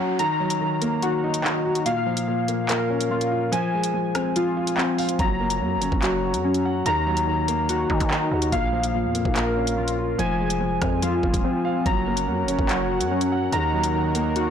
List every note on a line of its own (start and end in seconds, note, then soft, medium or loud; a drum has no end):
0.00 0.21 F#3 medium
0.00 0.22 A#3 medium
0.00 0.19 C#4 medium
0.00 0.19 F#4 medium
0.00 0.19 F#5 medium
0.00 0.18 A#5 loud
0.00 downlifter medium
0.19 0.59 D#3 medium
0.19 1.86 A#5 loud
0.19 closed hi-hat medium
0.40 1.44 F#3 medium
0.50 closed hi-hat medium
0.61 1.01 D#3 medium
0.81 1.86 A#3 medium
0.81 closed hi-hat medium
1.02 1.43 D#3 medium
1.02 1.86 F#4 loud
1.02 closed hi-hat medium
1.24 1.86 D#4 medium
1.34 closed hi-hat medium
1.44 1.86 D#3 medium
1.44 1.86 D#4 medium
1.44 clap loud
1.65 1.86 F#4 medium
1.75 closed hi-hat medium
1.86 2.26 A#2 medium
1.86 3.52 F5 loud
1.86 closed hi-hat medium
2.06 3.11 F3 medium
2.17 closed hi-hat medium
2.28 2.67 A#2 medium
2.48 3.53 A#3 medium
2.48 closed hi-hat medium
2.69 3.09 A#2 medium
2.69 3.52 A#4 medium
2.69 clap loud
2.69 closed hi-hat medium
2.90 3.52 C#4 medium
3.01 closed hi-hat medium
3.10 3.52 A#2 medium
3.10 3.52 F4 medium
3.21 closed hi-hat medium
3.32 3.52 F4 medium
3.52 3.92 F3 loud
3.52 5.19 G#5 loud
3.52 closed hi-hat medium
3.74 4.78 G#3 medium
3.84 closed hi-hat medium
3.94 4.35 F3 medium
4.15 5.19 C4 medium
4.15 cross-stick loud
4.15 closed hi-hat medium
4.36 4.76 F3 medium
4.36 5.19 F4 loud
4.36 closed hi-hat medium
4.57 5.19 F4 medium
4.67 closed hi-hat medium
4.77 5.19 F3 medium
4.77 5.19 C4 medium
4.77 clap loud
4.98 5.19 F5 medium
4.98 open hi-hat medium
5.09 closed hi-hat medium
5.19 5.62 F#1 loud
5.19 5.59 F#3 medium
5.19 6.85 A#5 loud
5.19 kick loud
5.19 closed hi-hat medium
5.40 6.44 A#3 medium
5.50 closed hi-hat medium
5.61 5.78 F#2 loud
5.61 6.01 F#3 medium
5.76 5.91 F#1 medium
5.81 6.86 C#4 medium
5.81 closed hi-hat medium
5.92 6.35 F#1 loud
5.92 kick medium
6.02 6.43 F#3 medium
6.02 6.86 F#4 medium
6.02 clap loud
6.02 closed hi-hat medium
6.24 6.86 F#4 medium
6.34 6.83 F#2 loud
6.34 closed hi-hat medium
6.44 6.86 F#3 medium
6.44 6.86 C#4 medium
6.54 closed hi-hat medium
6.65 6.86 F#5 medium
6.86 7.86 D#2 loud
6.86 7.26 D#3 loud
6.86 8.52 A#5 loud
6.86 closed hi-hat medium
7.07 8.11 F#3 medium
7.17 closed hi-hat medium
7.27 7.68 D#3 medium
7.48 8.52 A#3 medium
7.48 closed hi-hat medium
7.69 8.09 D#3 medium
7.69 8.52 F#4 loud
7.69 closed hi-hat medium
7.90 8.00 D#3 loud
7.90 8.53 D#4 medium
7.90 kick medium
8.00 8.30 D#3 loud
8.00 kick loud
8.00 closed hi-hat medium
8.11 8.53 D#3 medium
8.11 8.52 D#4 medium
8.11 clap loud
8.32 8.52 D#2 loud
8.32 8.53 F#4 medium
8.42 closed hi-hat medium
8.52 9.06 A#1 loud
8.52 8.93 A#2 medium
8.52 10.19 F5 loud
8.52 kick loud
8.52 closed hi-hat medium
8.73 9.77 F3 medium
8.83 closed hi-hat medium
8.94 9.34 A#2 medium
9.04 9.24 F2 loud
9.15 10.19 A#3 medium
9.15 closed hi-hat medium
9.25 10.15 A#1 loud
9.25 kick medium
9.36 9.75 A#2 medium
9.36 10.19 A#4 loud
9.36 clap loud
9.36 closed hi-hat medium
9.56 10.19 C#4 medium
9.67 closed hi-hat medium
9.77 10.19 A#2 medium
9.77 10.19 F4 medium
9.88 closed hi-hat medium
9.98 10.19 F4 medium
10.19 10.79 F1 loud
10.19 10.59 F3 loud
10.19 11.86 G#5 loud
10.19 closed hi-hat medium
10.40 11.44 G#3 medium
10.50 closed hi-hat medium
10.61 11.01 F3 medium
10.82 11.22 F2 loud
10.82 11.86 C4 medium
10.82 kick loud
10.82 cross-stick loud
10.82 closed hi-hat medium
11.02 11.43 F3 medium
11.02 11.86 F4 loud
11.02 closed hi-hat medium
11.23 11.33 F1 loud
11.23 11.86 F4 medium
11.23 kick medium
11.34 11.44 D#1 loud
11.34 kick loud
11.34 closed hi-hat medium
11.44 11.86 F3 medium
11.44 11.86 C4 medium
11.65 11.86 F5 medium
11.86 12.29 F#1 loud
11.86 12.26 F#3 medium
11.86 13.51 F#3 medium
11.86 13.51 C#4 medium
11.86 13.51 A#4 medium
11.86 14.50 F#5 medium
11.86 13.51 A#5 loud
11.86 kick loud
11.86 closed hi-hat medium
12.07 13.11 A#3 medium
12.17 closed hi-hat medium
12.27 12.45 F#2 loud
12.27 12.68 F#3 medium
12.43 12.58 F#1 loud
12.48 13.52 C#4 medium
12.48 closed hi-hat medium
12.59 13.02 F#1 loud
12.59 kick medium
12.69 13.10 F#3 medium
12.69 13.52 F#4 medium
12.69 clap loud
12.69 closed hi-hat medium
12.90 13.53 F#4 medium
13.00 13.50 F#2 loud
13.00 closed hi-hat medium
13.11 13.53 F#3 medium
13.11 13.53 C#4 medium
13.21 closed hi-hat medium
13.32 13.53 F#5 medium
13.52 14.50 D#2 loud
13.52 14.50 D#3 medium
13.52 13.92 D#3 loud
13.52 14.50 D#4 medium
13.52 14.50 A#4 medium
13.52 14.50 A#5 loud
13.52 closed hi-hat medium
13.73 14.50 F#3 medium
13.84 closed hi-hat medium
13.94 14.35 D#3 medium
14.15 14.50 A#3 medium
14.15 closed hi-hat medium
14.36 14.50 D#3 medium
14.36 14.50 F#4 loud
14.36 closed hi-hat medium